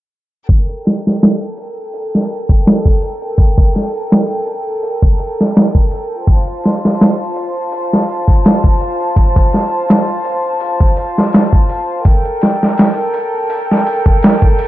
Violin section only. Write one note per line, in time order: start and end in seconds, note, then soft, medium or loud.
0.48 6.23 A4 medium
0.48 6.23 A#4 medium
0.48 6.23 G5 medium
6.28 12.02 F4 medium
6.28 12.02 C5 medium
6.28 12.02 A5 medium
12.05 14.68 A4 medium
12.05 14.68 A#4 medium
12.05 14.68 G5 medium